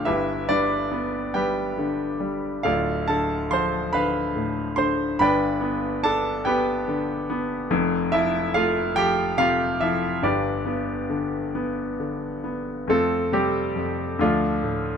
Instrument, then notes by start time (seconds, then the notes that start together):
grand piano
0.05 G1 G2 E4 G4 B4 E5
0.49 G3 D4 B4 D5
0.91 B3
1.34 G3 G4 B4 G5
1.78 D3
2.20 G3
2.63 D1 D2 F4 A4 D5 F5
3.07 D3 A4 A5
3.50 F3 C5 C6
3.93 D3 B4 F5 B5
4.36 A2
4.76 D3 C5 C6
5.19 G1 G2 B4 D5 G5 B5
5.61 B3
6.03 D4 A4 A5
6.45 B3 G4 B4 G5
6.88 D3
7.30 B3
7.71 F1 F2
8.12 F3 E4 E5
8.54 A3 F4 F5
8.96 F3 G4 G5
9.38 C3 F4 F5
9.80 F3 E4 E5
10.22 G1 G2 D4 G4 B4 D5
10.66 B3
11.10 D3
11.55 B3
12.00 D3
12.44 B3
12.87 F2 A3 C4 F4 A4
13.32 C3 G3 C4 G4
13.76 F2
14.19 D2 F3 A3 D4 F4
14.63 A2